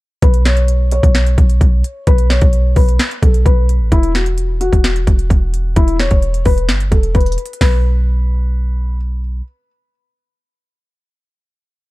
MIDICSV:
0, 0, Header, 1, 4, 480
1, 0, Start_track
1, 0, Tempo, 461538
1, 234, Time_signature, 4, 2, 24, 8
1, 12377, End_track
2, 0, Start_track
2, 0, Title_t, "Felt piano"
2, 0, Program_c, 0, 0
2, 236, Note_on_c, 0, 71, 91
2, 434, Note_off_c, 0, 71, 0
2, 474, Note_on_c, 0, 73, 77
2, 925, Note_off_c, 0, 73, 0
2, 959, Note_on_c, 0, 73, 85
2, 2115, Note_off_c, 0, 73, 0
2, 2157, Note_on_c, 0, 71, 94
2, 2354, Note_off_c, 0, 71, 0
2, 2389, Note_on_c, 0, 73, 84
2, 2843, Note_off_c, 0, 73, 0
2, 2871, Note_on_c, 0, 71, 84
2, 3323, Note_off_c, 0, 71, 0
2, 3358, Note_on_c, 0, 69, 80
2, 3555, Note_off_c, 0, 69, 0
2, 3595, Note_on_c, 0, 71, 86
2, 4046, Note_off_c, 0, 71, 0
2, 4079, Note_on_c, 0, 64, 99
2, 4276, Note_off_c, 0, 64, 0
2, 4319, Note_on_c, 0, 66, 76
2, 4767, Note_off_c, 0, 66, 0
2, 4791, Note_on_c, 0, 66, 91
2, 5951, Note_off_c, 0, 66, 0
2, 5994, Note_on_c, 0, 64, 92
2, 6193, Note_off_c, 0, 64, 0
2, 6239, Note_on_c, 0, 73, 91
2, 6688, Note_off_c, 0, 73, 0
2, 6717, Note_on_c, 0, 71, 98
2, 7166, Note_off_c, 0, 71, 0
2, 7191, Note_on_c, 0, 69, 79
2, 7391, Note_off_c, 0, 69, 0
2, 7432, Note_on_c, 0, 71, 85
2, 7884, Note_off_c, 0, 71, 0
2, 7915, Note_on_c, 0, 71, 87
2, 9313, Note_off_c, 0, 71, 0
2, 12377, End_track
3, 0, Start_track
3, 0, Title_t, "808-style bass"
3, 0, Program_c, 1, 38
3, 233, Note_on_c, 1, 35, 115
3, 1040, Note_off_c, 1, 35, 0
3, 1074, Note_on_c, 1, 35, 102
3, 1419, Note_off_c, 1, 35, 0
3, 1434, Note_on_c, 1, 35, 103
3, 1664, Note_off_c, 1, 35, 0
3, 1673, Note_on_c, 1, 35, 108
3, 1904, Note_off_c, 1, 35, 0
3, 2154, Note_on_c, 1, 35, 112
3, 2500, Note_off_c, 1, 35, 0
3, 2514, Note_on_c, 1, 35, 106
3, 2860, Note_off_c, 1, 35, 0
3, 2874, Note_on_c, 1, 35, 107
3, 3105, Note_off_c, 1, 35, 0
3, 3354, Note_on_c, 1, 35, 105
3, 3584, Note_off_c, 1, 35, 0
3, 3595, Note_on_c, 1, 35, 110
3, 3955, Note_on_c, 1, 33, 98
3, 3970, Note_off_c, 1, 35, 0
3, 4068, Note_off_c, 1, 33, 0
3, 4075, Note_on_c, 1, 28, 115
3, 4881, Note_off_c, 1, 28, 0
3, 4915, Note_on_c, 1, 28, 100
3, 5260, Note_off_c, 1, 28, 0
3, 5275, Note_on_c, 1, 28, 103
3, 5505, Note_off_c, 1, 28, 0
3, 5515, Note_on_c, 1, 28, 108
3, 5975, Note_off_c, 1, 28, 0
3, 5995, Note_on_c, 1, 28, 115
3, 6340, Note_off_c, 1, 28, 0
3, 6354, Note_on_c, 1, 28, 109
3, 6700, Note_off_c, 1, 28, 0
3, 6715, Note_on_c, 1, 28, 111
3, 6955, Note_on_c, 1, 31, 102
3, 6971, Note_off_c, 1, 28, 0
3, 7182, Note_off_c, 1, 31, 0
3, 7194, Note_on_c, 1, 28, 108
3, 7424, Note_off_c, 1, 28, 0
3, 7434, Note_on_c, 1, 28, 105
3, 7664, Note_off_c, 1, 28, 0
3, 7915, Note_on_c, 1, 35, 111
3, 9793, Note_off_c, 1, 35, 0
3, 12377, End_track
4, 0, Start_track
4, 0, Title_t, "Drums"
4, 233, Note_on_c, 9, 36, 125
4, 233, Note_on_c, 9, 42, 92
4, 337, Note_off_c, 9, 36, 0
4, 337, Note_off_c, 9, 42, 0
4, 350, Note_on_c, 9, 42, 75
4, 454, Note_off_c, 9, 42, 0
4, 473, Note_on_c, 9, 38, 100
4, 475, Note_on_c, 9, 42, 57
4, 577, Note_off_c, 9, 38, 0
4, 579, Note_off_c, 9, 42, 0
4, 590, Note_on_c, 9, 42, 55
4, 694, Note_off_c, 9, 42, 0
4, 710, Note_on_c, 9, 42, 73
4, 814, Note_off_c, 9, 42, 0
4, 952, Note_on_c, 9, 42, 86
4, 1056, Note_off_c, 9, 42, 0
4, 1074, Note_on_c, 9, 36, 99
4, 1079, Note_on_c, 9, 42, 61
4, 1178, Note_off_c, 9, 36, 0
4, 1183, Note_off_c, 9, 42, 0
4, 1193, Note_on_c, 9, 38, 121
4, 1196, Note_on_c, 9, 42, 77
4, 1297, Note_off_c, 9, 38, 0
4, 1300, Note_off_c, 9, 42, 0
4, 1316, Note_on_c, 9, 42, 56
4, 1420, Note_off_c, 9, 42, 0
4, 1434, Note_on_c, 9, 36, 104
4, 1435, Note_on_c, 9, 42, 87
4, 1538, Note_off_c, 9, 36, 0
4, 1539, Note_off_c, 9, 42, 0
4, 1555, Note_on_c, 9, 42, 61
4, 1659, Note_off_c, 9, 42, 0
4, 1674, Note_on_c, 9, 36, 94
4, 1676, Note_on_c, 9, 42, 67
4, 1778, Note_off_c, 9, 36, 0
4, 1780, Note_off_c, 9, 42, 0
4, 1917, Note_on_c, 9, 42, 74
4, 2021, Note_off_c, 9, 42, 0
4, 2153, Note_on_c, 9, 42, 95
4, 2154, Note_on_c, 9, 36, 123
4, 2257, Note_off_c, 9, 42, 0
4, 2258, Note_off_c, 9, 36, 0
4, 2271, Note_on_c, 9, 42, 70
4, 2375, Note_off_c, 9, 42, 0
4, 2393, Note_on_c, 9, 38, 99
4, 2395, Note_on_c, 9, 42, 60
4, 2497, Note_off_c, 9, 38, 0
4, 2499, Note_off_c, 9, 42, 0
4, 2510, Note_on_c, 9, 42, 54
4, 2514, Note_on_c, 9, 36, 106
4, 2614, Note_off_c, 9, 42, 0
4, 2618, Note_off_c, 9, 36, 0
4, 2630, Note_on_c, 9, 42, 72
4, 2734, Note_off_c, 9, 42, 0
4, 2872, Note_on_c, 9, 46, 84
4, 2874, Note_on_c, 9, 36, 91
4, 2976, Note_off_c, 9, 46, 0
4, 2978, Note_off_c, 9, 36, 0
4, 3001, Note_on_c, 9, 42, 59
4, 3105, Note_off_c, 9, 42, 0
4, 3114, Note_on_c, 9, 38, 119
4, 3117, Note_on_c, 9, 42, 76
4, 3218, Note_off_c, 9, 38, 0
4, 3221, Note_off_c, 9, 42, 0
4, 3237, Note_on_c, 9, 42, 53
4, 3341, Note_off_c, 9, 42, 0
4, 3355, Note_on_c, 9, 36, 106
4, 3356, Note_on_c, 9, 42, 85
4, 3459, Note_off_c, 9, 36, 0
4, 3460, Note_off_c, 9, 42, 0
4, 3476, Note_on_c, 9, 42, 60
4, 3580, Note_off_c, 9, 42, 0
4, 3595, Note_on_c, 9, 36, 94
4, 3598, Note_on_c, 9, 42, 68
4, 3699, Note_off_c, 9, 36, 0
4, 3702, Note_off_c, 9, 42, 0
4, 3839, Note_on_c, 9, 42, 77
4, 3943, Note_off_c, 9, 42, 0
4, 4075, Note_on_c, 9, 36, 119
4, 4075, Note_on_c, 9, 42, 92
4, 4179, Note_off_c, 9, 36, 0
4, 4179, Note_off_c, 9, 42, 0
4, 4193, Note_on_c, 9, 42, 74
4, 4297, Note_off_c, 9, 42, 0
4, 4315, Note_on_c, 9, 38, 98
4, 4318, Note_on_c, 9, 42, 58
4, 4419, Note_off_c, 9, 38, 0
4, 4422, Note_off_c, 9, 42, 0
4, 4432, Note_on_c, 9, 42, 54
4, 4536, Note_off_c, 9, 42, 0
4, 4552, Note_on_c, 9, 42, 73
4, 4656, Note_off_c, 9, 42, 0
4, 4793, Note_on_c, 9, 42, 81
4, 4897, Note_off_c, 9, 42, 0
4, 4915, Note_on_c, 9, 36, 97
4, 4921, Note_on_c, 9, 42, 61
4, 5019, Note_off_c, 9, 36, 0
4, 5025, Note_off_c, 9, 42, 0
4, 5035, Note_on_c, 9, 38, 116
4, 5037, Note_on_c, 9, 42, 76
4, 5139, Note_off_c, 9, 38, 0
4, 5141, Note_off_c, 9, 42, 0
4, 5158, Note_on_c, 9, 42, 54
4, 5262, Note_off_c, 9, 42, 0
4, 5275, Note_on_c, 9, 36, 104
4, 5277, Note_on_c, 9, 42, 90
4, 5379, Note_off_c, 9, 36, 0
4, 5381, Note_off_c, 9, 42, 0
4, 5397, Note_on_c, 9, 42, 60
4, 5501, Note_off_c, 9, 42, 0
4, 5515, Note_on_c, 9, 36, 100
4, 5519, Note_on_c, 9, 42, 67
4, 5619, Note_off_c, 9, 36, 0
4, 5623, Note_off_c, 9, 42, 0
4, 5758, Note_on_c, 9, 42, 76
4, 5862, Note_off_c, 9, 42, 0
4, 5994, Note_on_c, 9, 36, 127
4, 5994, Note_on_c, 9, 42, 92
4, 6098, Note_off_c, 9, 36, 0
4, 6098, Note_off_c, 9, 42, 0
4, 6113, Note_on_c, 9, 42, 74
4, 6217, Note_off_c, 9, 42, 0
4, 6235, Note_on_c, 9, 38, 99
4, 6237, Note_on_c, 9, 42, 57
4, 6339, Note_off_c, 9, 38, 0
4, 6341, Note_off_c, 9, 42, 0
4, 6351, Note_on_c, 9, 42, 55
4, 6354, Note_on_c, 9, 36, 104
4, 6455, Note_off_c, 9, 42, 0
4, 6458, Note_off_c, 9, 36, 0
4, 6474, Note_on_c, 9, 42, 62
4, 6578, Note_off_c, 9, 42, 0
4, 6595, Note_on_c, 9, 42, 62
4, 6699, Note_off_c, 9, 42, 0
4, 6712, Note_on_c, 9, 46, 85
4, 6715, Note_on_c, 9, 36, 94
4, 6816, Note_off_c, 9, 46, 0
4, 6819, Note_off_c, 9, 36, 0
4, 6840, Note_on_c, 9, 42, 58
4, 6944, Note_off_c, 9, 42, 0
4, 6954, Note_on_c, 9, 38, 118
4, 6957, Note_on_c, 9, 42, 74
4, 7058, Note_off_c, 9, 38, 0
4, 7061, Note_off_c, 9, 42, 0
4, 7076, Note_on_c, 9, 42, 54
4, 7180, Note_off_c, 9, 42, 0
4, 7194, Note_on_c, 9, 36, 102
4, 7195, Note_on_c, 9, 42, 88
4, 7298, Note_off_c, 9, 36, 0
4, 7299, Note_off_c, 9, 42, 0
4, 7314, Note_on_c, 9, 42, 60
4, 7418, Note_off_c, 9, 42, 0
4, 7433, Note_on_c, 9, 42, 42
4, 7434, Note_on_c, 9, 36, 95
4, 7494, Note_off_c, 9, 42, 0
4, 7494, Note_on_c, 9, 42, 50
4, 7538, Note_off_c, 9, 36, 0
4, 7554, Note_off_c, 9, 42, 0
4, 7554, Note_on_c, 9, 42, 62
4, 7613, Note_off_c, 9, 42, 0
4, 7613, Note_on_c, 9, 42, 68
4, 7674, Note_off_c, 9, 42, 0
4, 7674, Note_on_c, 9, 42, 62
4, 7754, Note_off_c, 9, 42, 0
4, 7754, Note_on_c, 9, 42, 62
4, 7834, Note_off_c, 9, 42, 0
4, 7834, Note_on_c, 9, 42, 61
4, 7915, Note_on_c, 9, 36, 109
4, 7915, Note_on_c, 9, 38, 110
4, 7915, Note_on_c, 9, 46, 92
4, 7938, Note_off_c, 9, 42, 0
4, 8019, Note_off_c, 9, 36, 0
4, 8019, Note_off_c, 9, 38, 0
4, 8019, Note_off_c, 9, 46, 0
4, 12377, End_track
0, 0, End_of_file